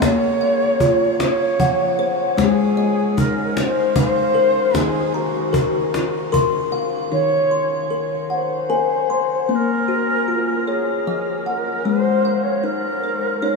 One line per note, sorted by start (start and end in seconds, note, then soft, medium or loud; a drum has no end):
0.00 2.33 A#3 medium
0.00 0.40 F5 medium
0.00 0.41 C6 medium
0.00 cajon bass medium
0.00 cajon slap medium
0.04 1.15 C#5 loud
0.41 1.59 F5 medium
0.61 cajon slap soft
0.80 1.59 F4 medium
0.80 cajon bass medium
1.20 2.05 C#5 loud
1.20 cajon slap medium
1.60 2.39 F3 medium
1.60 2.78 F#5 medium
1.60 cajon bass soft
1.99 2.78 C5 medium
2.37 3.17 G#3 medium
2.37 3.20 G#4 loud
2.37 cajon bass medium
2.37 cajon slap medium
2.77 3.96 D#5 medium
2.98 cajon slap soft
3.17 3.95 D#4 medium
3.17 3.62 A#4 medium
3.17 cajon bass medium
3.57 3.66 C#5 medium
3.57 cajon slap medium
3.65 3.96 C5 medium
3.96 4.73 D#4 medium
3.96 4.78 C5 loud
3.96 5.14 F5 medium
3.96 cajon bass medium
4.35 5.14 A#4 medium
4.74 7.07 D#3 medium
4.74 5.54 D#4 medium
4.74 5.17 G#4 loud
4.74 cajon bass medium
4.74 cajon slap medium
5.14 5.93 F#4 medium
5.14 6.33 A#5 medium
5.34 cajon slap soft
5.53 6.31 A#4 medium
5.53 cajon bass medium
5.94 6.05 F4 medium
5.94 cajon slap medium
6.05 6.78 F#4 medium
6.32 7.11 A#4 medium
6.32 7.50 C6 medium
6.32 cajon bass soft
6.72 7.51 F5 medium
6.72 cajon slap soft
7.12 9.44 D#3 medium
7.12 7.91 D#4 medium
7.12 7.87 C#5 loud
7.51 8.69 C6 soft
7.90 8.68 A#4 medium
8.30 8.35 C#5 medium
8.30 9.48 F#5 medium
8.34 9.51 C5 medium
8.70 9.48 A#4 medium
8.70 9.88 G#5 medium
9.10 9.88 C6 medium
9.49 11.81 A#3 medium
9.49 9.56 C5 medium
9.55 10.69 A#4 loud
9.88 11.06 F#4 medium
10.28 11.06 F4 medium
10.67 11.48 G#4 medium
10.67 11.85 C#5 medium
11.07 11.86 F3 medium
11.07 12.25 D#5 medium
11.46 11.87 A#4 medium
11.46 12.25 F#5 medium
11.85 12.64 G#3 medium
11.85 12.45 C5 loud
12.25 13.43 F5 soft
12.44 12.66 C#5 medium
12.64 13.41 D#4 medium
12.64 13.56 A#4 medium
13.04 13.56 C5 medium
13.42 13.56 D#4 medium
13.42 13.56 C#5 medium